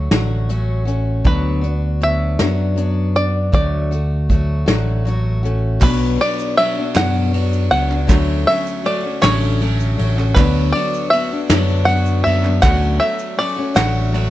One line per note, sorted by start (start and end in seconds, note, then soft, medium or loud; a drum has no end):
0.00 0.11 F#3 medium
0.00 0.11 A3 medium
0.00 0.45 D5 medium
0.11 1.22 A1 medium
0.11 0.51 D3 medium
0.11 0.48 F#3 medium
0.11 0.48 A3 medium
0.11 0.50 F#4 medium
0.11 snare loud
0.11 closed hi-hat medium
0.49 0.88 F#3 medium
0.49 0.87 A3 medium
0.49 0.86 C#4 medium
0.49 0.84 F#4 medium
0.49 closed hi-hat medium
0.85 1.24 A3 soft
0.85 1.25 C#4 soft
0.85 1.25 F#4 medium
0.85 closed hi-hat medium
1.24 2.36 D2 medium
1.24 1.63 D3 medium
1.24 1.64 F#3 medium
1.24 1.63 B3 medium
1.24 1.62 D4 medium
1.24 1.60 F#4 medium
1.24 2.05 B4 medium
1.24 kick loud
1.24 closed hi-hat medium
1.61 2.00 B3 soft
1.61 2.01 D4 soft
1.61 2.01 F#4 medium
1.61 closed hi-hat medium
2.01 2.39 F#3 medium
2.01 2.39 B3 medium
2.01 2.39 D4 medium
2.01 2.38 F#4 medium
2.01 3.16 E5 medium
2.01 closed hi-hat medium
2.39 3.50 F#2 medium
2.39 2.79 D3 medium
2.39 2.75 F#3 medium
2.39 2.76 B3 medium
2.39 2.76 D4 medium
2.39 2.78 F#4 medium
2.39 snare loud
2.39 closed hi-hat medium
2.76 3.15 F#3 medium
2.76 3.16 B3 medium
2.76 3.15 D4 medium
2.76 3.14 F#4 medium
2.76 closed hi-hat medium
3.15 3.52 B3 soft
3.15 3.54 D4 soft
3.15 3.53 F#4 soft
3.15 3.53 D5 medium
3.15 closed hi-hat medium
3.52 4.64 D2 loud
3.52 3.91 D3 medium
3.52 3.92 F#3 medium
3.52 3.92 A3 medium
3.52 3.90 F#4 medium
3.52 5.40 D5 medium
3.52 kick loud
3.52 closed hi-hat medium
3.91 4.29 A3 soft
3.91 4.30 F#4 medium
3.91 closed hi-hat medium
4.29 4.66 F#3 medium
4.29 4.66 A3 medium
4.29 4.65 F#4 medium
4.29 kick medium
4.29 closed hi-hat medium
4.66 5.78 A1 medium
4.66 5.06 D3 medium
4.66 5.04 F#3 medium
4.66 5.05 A3 medium
4.66 5.05 F#4 medium
4.66 snare loud
4.66 closed hi-hat medium
5.05 5.44 F#3 medium
5.05 5.44 A3 medium
5.05 5.42 F#4 medium
5.05 closed hi-hat medium
5.43 5.81 A3 soft
5.43 5.81 C#4 soft
5.43 5.81 F#4 medium
5.43 closed hi-hat medium
5.80 6.16 B1 medium
5.80 8.06 B1 medium
5.80 6.19 B2 medium
5.80 8.06 B2 medium
5.80 6.17 F#3 medium
5.80 8.06 F#3 medium
5.80 6.18 B3 medium
5.80 8.06 B3 medium
5.80 6.19 D4 medium
5.80 8.06 D4 medium
5.80 6.20 F#4 medium
5.80 6.22 B4 medium
5.80 8.06 B4 medium
5.80 kick loud
5.80 clap medium
5.80 crash loud
5.80 shaker medium
5.84 8.07 D5 medium
6.18 6.57 F#3 medium
6.18 6.58 B3 medium
6.18 6.58 D4 medium
6.18 6.59 F#4 medium
6.18 6.57 D5 medium
6.18 ride medium
6.39 shaker medium
6.57 6.77 F#3 medium
6.57 6.78 B3 medium
6.57 6.77 D4 medium
6.57 6.76 F#4 medium
6.57 6.96 E5 loud
6.57 ride medium
6.57 shaker soft
6.77 6.94 B3 soft
6.77 6.94 D4 soft
6.77 6.94 F#4 medium
6.94 7.68 F#2 medium
6.94 7.33 B2 medium
6.94 7.30 F#3 medium
6.94 7.32 B3 medium
6.94 7.33 D4 medium
6.94 7.33 F#4 medium
6.94 7.70 F#5 loud
6.94 snare loud
6.94 clap medium
6.94 ride medium
6.94 shaker medium
7.15 shaker soft
7.31 7.69 F#3 medium
7.31 7.70 B3 medium
7.31 7.71 D4 medium
7.31 7.72 F#4 medium
7.31 ride medium
7.31 shaker soft
7.53 shaker medium
7.70 8.06 C#2 medium
7.70 7.90 F#3 medium
7.70 7.90 B3 medium
7.70 7.88 D4 medium
7.70 7.87 F#4 medium
7.70 8.47 F#5 loud
7.70 ride medium
7.70 shaker soft
7.88 8.08 B3 soft
7.88 8.09 D4 medium
7.88 8.08 F#4 medium
7.88 clap soft
8.07 8.44 D2 loud
8.07 10.33 D2 medium
8.07 8.46 D3 medium
8.07 8.46 F#3 medium
8.07 10.33 F#3 medium
8.07 8.46 A3 medium
8.07 10.33 A3 medium
8.07 8.47 C#4 medium
8.07 10.33 D4 medium
8.07 8.47 F#4 medium
8.07 10.34 A4 medium
8.07 kick loud
8.07 clap medium
8.07 ride medium
8.07 shaker medium
8.11 10.34 D3 medium
8.47 8.83 F#3 medium
8.47 8.84 A3 medium
8.47 8.85 C#4 medium
8.47 8.85 F#4 medium
8.47 8.86 E5 loud
8.47 ride medium
8.66 shaker medium
8.84 9.04 F#3 medium
8.84 9.05 A3 medium
8.84 9.04 C#4 medium
8.84 9.02 F#4 medium
8.84 9.25 D5 medium
8.84 ride medium
8.84 shaker soft
9.03 9.21 A3 soft
9.03 9.22 C#4 medium
9.03 9.23 F#4 medium
9.21 9.95 A1 medium
9.21 9.60 D3 medium
9.21 9.59 F#3 medium
9.21 9.60 A3 medium
9.21 9.61 C#4 medium
9.21 9.62 F#4 medium
9.21 10.04 C#5 loud
9.21 snare loud
9.21 clap medium
9.21 ride medium
9.21 shaker loud
9.42 shaker soft
9.60 9.95 F#3 medium
9.60 9.97 A3 medium
9.60 9.97 C#4 medium
9.60 9.99 F#4 medium
9.60 ride medium
9.60 shaker soft
9.80 shaker medium
9.97 10.34 A1 medium
9.97 10.17 F#3 medium
9.97 10.18 A3 medium
9.97 10.17 C#4 medium
9.97 10.15 F#4 medium
9.97 ride medium
9.97 shaker soft
10.16 10.37 A3 soft
10.16 10.37 C#4 medium
10.16 10.36 F#4 medium
10.16 clap soft
10.35 10.71 D2 loud
10.35 12.60 D2 medium
10.35 10.75 D3 medium
10.35 12.60 D3 medium
10.35 12.60 F#3 medium
10.35 10.73 F#3 loud
10.35 12.60 B3 medium
10.35 10.74 B3 medium
10.35 12.60 D4 medium
10.35 10.74 D4 medium
10.35 10.75 F#4 medium
10.35 10.75 B4 medium
10.35 12.60 B4 medium
10.35 kick loud
10.35 clap loud
10.35 ride medium
10.35 shaker medium
10.39 12.61 D5 medium
10.72 11.10 F#3 medium
10.72 11.11 B3 medium
10.72 11.12 D4 medium
10.72 11.10 D5 loud
10.72 ride medium
10.77 11.13 F#4 medium
10.94 shaker medium
11.10 11.31 F#3 medium
11.10 11.32 B3 medium
11.10 11.31 D4 medium
11.10 11.30 F#4 medium
11.10 11.85 E5 loud
11.10 ride medium
11.10 shaker soft
11.31 11.50 B3 soft
11.31 11.51 D4 soft
11.31 11.50 F#4 medium
11.50 12.22 F#2 medium
11.50 11.88 D3 medium
11.50 11.85 F#3 medium
11.50 11.86 B3 medium
11.50 11.87 D4 medium
11.50 11.88 F#4 medium
11.50 snare loud
11.50 clap medium
11.50 ride medium
11.50 shaker medium
11.69 shaker soft
11.85 12.24 F#3 medium
11.85 12.25 B3 medium
11.85 12.25 D4 medium
11.85 12.23 F#5 loud
11.85 ride medium
11.85 shaker soft
11.90 12.26 F#4 medium
12.06 shaker medium
12.24 12.60 F#2 medium
12.24 12.44 F#3 medium
12.24 12.45 B3 medium
12.24 12.43 D4 medium
12.24 12.41 F#4 medium
12.24 12.62 E5 medium
12.24 ride medium
12.24 shaker soft
12.43 12.63 B3 soft
12.43 12.63 D4 soft
12.43 12.63 F#4 medium
12.43 clap soft
12.62 12.98 D2 loud
12.62 13.01 D3 medium
12.62 14.30 F#3 medium
12.62 12.97 F#3 medium
12.62 14.30 A3 medium
12.62 12.99 A3 medium
12.62 13.01 C#4 medium
12.62 14.30 D4 medium
12.62 13.00 F#4 medium
12.62 14.30 A4 medium
12.62 14.30 D5 medium
12.62 12.99 F#5 loud
12.62 kick loud
12.62 clap loud
12.62 ride medium
12.62 shaker medium
12.82 shaker soft
12.98 13.35 F#3 medium
12.98 13.37 A3 medium
12.98 13.38 F#4 medium
12.98 13.40 E5 medium
12.98 clap soft
12.98 ride medium
13.19 shaker medium
13.37 13.57 F#3 medium
13.37 13.58 A3 medium
13.37 13.57 C#4 medium
13.37 13.55 F#4 medium
13.37 13.74 D5 medium
13.37 clap soft
13.37 ride medium
13.56 13.74 A3 soft
13.56 13.77 C#4 medium
13.56 13.75 F#4 soft
13.74 14.30 A1 medium
13.74 14.14 D3 medium
13.74 14.11 F#3 medium
13.74 14.12 A3 medium
13.74 14.13 F#4 medium
13.74 14.30 F#5 loud
13.74 snare loud
13.74 clap loud
13.74 ride medium
13.74 shaker loud
14.12 14.30 F#3 medium
14.12 14.30 A3 medium
14.12 14.30 F#4 medium
14.12 clap soft
14.12 ride medium